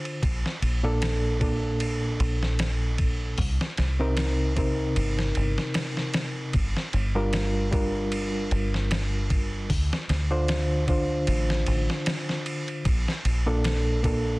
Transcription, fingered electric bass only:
0, 0, Header, 1, 2, 480
1, 0, Start_track
1, 0, Key_signature, -2, "minor"
1, 0, Tempo, 789474
1, 137, Time_signature, 4, 2, 24, 8
1, 8750, End_track
2, 0, Start_track
2, 0, Title_t, "Fingered electric bass"
2, 0, Program_c, 0, 33
2, 139, Note_on_c, 0, 34, 90
2, 256, Note_off_c, 0, 34, 0
2, 376, Note_on_c, 0, 34, 90
2, 1316, Note_off_c, 0, 34, 0
2, 1336, Note_on_c, 0, 34, 100
2, 2036, Note_off_c, 0, 34, 0
2, 2056, Note_on_c, 0, 36, 98
2, 2174, Note_off_c, 0, 36, 0
2, 2300, Note_on_c, 0, 36, 93
2, 2998, Note_off_c, 0, 36, 0
2, 3018, Note_on_c, 0, 31, 95
2, 3232, Note_off_c, 0, 31, 0
2, 3262, Note_on_c, 0, 31, 92
2, 3377, Note_off_c, 0, 31, 0
2, 3977, Note_on_c, 0, 31, 96
2, 4095, Note_off_c, 0, 31, 0
2, 4216, Note_on_c, 0, 31, 94
2, 5156, Note_off_c, 0, 31, 0
2, 5177, Note_on_c, 0, 31, 97
2, 5876, Note_off_c, 0, 31, 0
2, 5898, Note_on_c, 0, 38, 101
2, 6015, Note_off_c, 0, 38, 0
2, 6137, Note_on_c, 0, 38, 94
2, 6836, Note_off_c, 0, 38, 0
2, 6856, Note_on_c, 0, 33, 99
2, 7071, Note_off_c, 0, 33, 0
2, 7098, Note_on_c, 0, 33, 95
2, 7215, Note_off_c, 0, 33, 0
2, 7815, Note_on_c, 0, 34, 100
2, 7934, Note_off_c, 0, 34, 0
2, 8054, Note_on_c, 0, 34, 93
2, 8750, Note_off_c, 0, 34, 0
2, 8750, End_track
0, 0, End_of_file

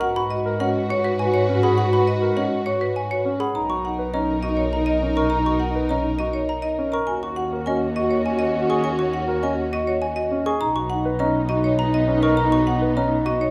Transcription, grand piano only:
0, 0, Header, 1, 2, 480
1, 0, Start_track
1, 0, Key_signature, 5, "major"
1, 0, Tempo, 588235
1, 16, Time_signature, 3, 2, 24, 8
1, 11020, End_track
2, 0, Start_track
2, 0, Title_t, "Grand piano"
2, 0, Program_c, 0, 0
2, 133, Note_on_c, 0, 66, 68
2, 290, Note_off_c, 0, 66, 0
2, 372, Note_on_c, 0, 70, 75
2, 490, Note_on_c, 0, 61, 69
2, 530, Note_off_c, 0, 70, 0
2, 649, Note_off_c, 0, 61, 0
2, 732, Note_on_c, 0, 66, 76
2, 890, Note_off_c, 0, 66, 0
2, 1212, Note_on_c, 0, 61, 68
2, 1331, Note_on_c, 0, 68, 80
2, 1370, Note_off_c, 0, 61, 0
2, 1490, Note_off_c, 0, 68, 0
2, 1573, Note_on_c, 0, 66, 66
2, 1730, Note_off_c, 0, 66, 0
2, 1811, Note_on_c, 0, 70, 63
2, 1932, Note_on_c, 0, 61, 68
2, 1969, Note_off_c, 0, 70, 0
2, 2090, Note_off_c, 0, 61, 0
2, 2173, Note_on_c, 0, 66, 69
2, 2330, Note_off_c, 0, 66, 0
2, 2653, Note_on_c, 0, 61, 61
2, 2773, Note_on_c, 0, 68, 77
2, 2810, Note_off_c, 0, 61, 0
2, 2930, Note_off_c, 0, 68, 0
2, 3017, Note_on_c, 0, 66, 61
2, 3172, Note_off_c, 0, 66, 0
2, 3254, Note_on_c, 0, 71, 59
2, 3377, Note_on_c, 0, 61, 65
2, 3411, Note_off_c, 0, 71, 0
2, 3532, Note_off_c, 0, 61, 0
2, 3617, Note_on_c, 0, 66, 61
2, 3772, Note_off_c, 0, 66, 0
2, 4097, Note_on_c, 0, 61, 57
2, 4216, Note_on_c, 0, 70, 79
2, 4252, Note_off_c, 0, 61, 0
2, 4371, Note_off_c, 0, 70, 0
2, 4456, Note_on_c, 0, 66, 62
2, 4612, Note_off_c, 0, 66, 0
2, 4695, Note_on_c, 0, 71, 60
2, 4815, Note_on_c, 0, 61, 62
2, 4851, Note_off_c, 0, 71, 0
2, 4971, Note_off_c, 0, 61, 0
2, 5056, Note_on_c, 0, 66, 65
2, 5211, Note_off_c, 0, 66, 0
2, 5536, Note_on_c, 0, 61, 62
2, 5656, Note_on_c, 0, 70, 78
2, 5691, Note_off_c, 0, 61, 0
2, 5811, Note_off_c, 0, 70, 0
2, 5900, Note_on_c, 0, 66, 64
2, 6053, Note_off_c, 0, 66, 0
2, 6141, Note_on_c, 0, 70, 61
2, 6256, Note_on_c, 0, 61, 64
2, 6293, Note_off_c, 0, 70, 0
2, 6411, Note_off_c, 0, 61, 0
2, 6495, Note_on_c, 0, 66, 65
2, 6651, Note_off_c, 0, 66, 0
2, 6976, Note_on_c, 0, 61, 58
2, 7095, Note_on_c, 0, 68, 76
2, 7131, Note_off_c, 0, 61, 0
2, 7251, Note_off_c, 0, 68, 0
2, 7333, Note_on_c, 0, 66, 66
2, 7490, Note_off_c, 0, 66, 0
2, 7572, Note_on_c, 0, 70, 65
2, 7693, Note_on_c, 0, 61, 65
2, 7730, Note_off_c, 0, 70, 0
2, 7850, Note_off_c, 0, 61, 0
2, 7937, Note_on_c, 0, 66, 72
2, 8092, Note_off_c, 0, 66, 0
2, 8416, Note_on_c, 0, 61, 64
2, 8536, Note_on_c, 0, 68, 86
2, 8571, Note_off_c, 0, 61, 0
2, 8692, Note_off_c, 0, 68, 0
2, 8776, Note_on_c, 0, 66, 65
2, 8932, Note_off_c, 0, 66, 0
2, 9019, Note_on_c, 0, 71, 73
2, 9137, Note_on_c, 0, 61, 71
2, 9172, Note_off_c, 0, 71, 0
2, 9292, Note_off_c, 0, 61, 0
2, 9377, Note_on_c, 0, 66, 69
2, 9532, Note_off_c, 0, 66, 0
2, 9855, Note_on_c, 0, 61, 67
2, 9977, Note_on_c, 0, 70, 91
2, 10011, Note_off_c, 0, 61, 0
2, 10132, Note_off_c, 0, 70, 0
2, 10216, Note_on_c, 0, 66, 72
2, 10371, Note_off_c, 0, 66, 0
2, 10458, Note_on_c, 0, 71, 69
2, 10580, Note_on_c, 0, 61, 68
2, 10612, Note_off_c, 0, 71, 0
2, 10733, Note_off_c, 0, 61, 0
2, 10817, Note_on_c, 0, 66, 77
2, 10972, Note_off_c, 0, 66, 0
2, 11020, End_track
0, 0, End_of_file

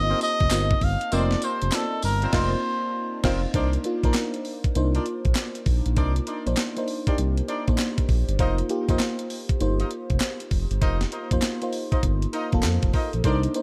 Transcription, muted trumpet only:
0, 0, Header, 1, 2, 480
1, 0, Start_track
1, 0, Tempo, 606061
1, 885, Time_signature, 4, 2, 24, 8
1, 10789, End_track
2, 0, Start_track
2, 0, Title_t, "Muted trumpet"
2, 0, Program_c, 0, 59
2, 0, Note_on_c, 0, 75, 108
2, 173, Note_off_c, 0, 75, 0
2, 179, Note_on_c, 0, 75, 110
2, 666, Note_on_c, 0, 77, 92
2, 678, Note_off_c, 0, 75, 0
2, 901, Note_on_c, 0, 74, 95
2, 913, Note_off_c, 0, 77, 0
2, 1142, Note_on_c, 0, 72, 92
2, 1154, Note_off_c, 0, 74, 0
2, 1382, Note_on_c, 0, 69, 87
2, 1394, Note_off_c, 0, 72, 0
2, 1614, Note_off_c, 0, 69, 0
2, 1621, Note_on_c, 0, 70, 88
2, 1859, Note_on_c, 0, 72, 88
2, 1870, Note_off_c, 0, 70, 0
2, 2572, Note_off_c, 0, 72, 0
2, 10789, End_track
0, 0, End_of_file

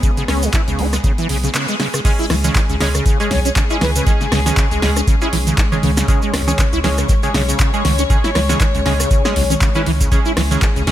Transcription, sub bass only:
0, 0, Header, 1, 2, 480
1, 0, Start_track
1, 0, Tempo, 504202
1, 30, Time_signature, 4, 2, 24, 8
1, 10393, End_track
2, 0, Start_track
2, 0, Title_t, "Sub bass"
2, 0, Program_c, 0, 38
2, 271, Note_on_c, 0, 37, 96
2, 458, Note_off_c, 0, 37, 0
2, 646, Note_on_c, 0, 37, 98
2, 724, Note_off_c, 0, 37, 0
2, 750, Note_on_c, 0, 37, 82
2, 937, Note_off_c, 0, 37, 0
2, 1232, Note_on_c, 0, 35, 95
2, 1418, Note_off_c, 0, 35, 0
2, 2191, Note_on_c, 0, 37, 100
2, 2378, Note_off_c, 0, 37, 0
2, 2567, Note_on_c, 0, 37, 99
2, 2645, Note_off_c, 0, 37, 0
2, 2672, Note_on_c, 0, 37, 82
2, 2858, Note_off_c, 0, 37, 0
2, 3151, Note_on_c, 0, 35, 96
2, 3338, Note_off_c, 0, 35, 0
2, 3632, Note_on_c, 0, 37, 92
2, 3818, Note_off_c, 0, 37, 0
2, 4111, Note_on_c, 0, 37, 98
2, 4298, Note_off_c, 0, 37, 0
2, 4487, Note_on_c, 0, 37, 102
2, 4565, Note_off_c, 0, 37, 0
2, 4591, Note_on_c, 0, 37, 85
2, 4778, Note_off_c, 0, 37, 0
2, 5072, Note_on_c, 0, 35, 93
2, 5258, Note_off_c, 0, 35, 0
2, 5551, Note_on_c, 0, 37, 91
2, 5738, Note_off_c, 0, 37, 0
2, 6031, Note_on_c, 0, 37, 98
2, 6218, Note_off_c, 0, 37, 0
2, 6407, Note_on_c, 0, 37, 105
2, 6485, Note_off_c, 0, 37, 0
2, 6512, Note_on_c, 0, 37, 83
2, 6698, Note_off_c, 0, 37, 0
2, 6992, Note_on_c, 0, 35, 95
2, 7178, Note_off_c, 0, 35, 0
2, 7472, Note_on_c, 0, 37, 98
2, 7658, Note_off_c, 0, 37, 0
2, 7951, Note_on_c, 0, 37, 101
2, 8138, Note_off_c, 0, 37, 0
2, 8327, Note_on_c, 0, 37, 102
2, 8404, Note_off_c, 0, 37, 0
2, 8431, Note_on_c, 0, 37, 83
2, 8618, Note_off_c, 0, 37, 0
2, 8911, Note_on_c, 0, 35, 77
2, 9098, Note_off_c, 0, 35, 0
2, 9391, Note_on_c, 0, 37, 84
2, 9578, Note_off_c, 0, 37, 0
2, 9871, Note_on_c, 0, 37, 100
2, 10058, Note_off_c, 0, 37, 0
2, 10247, Note_on_c, 0, 37, 99
2, 10325, Note_off_c, 0, 37, 0
2, 10351, Note_on_c, 0, 37, 83
2, 10393, Note_off_c, 0, 37, 0
2, 10393, End_track
0, 0, End_of_file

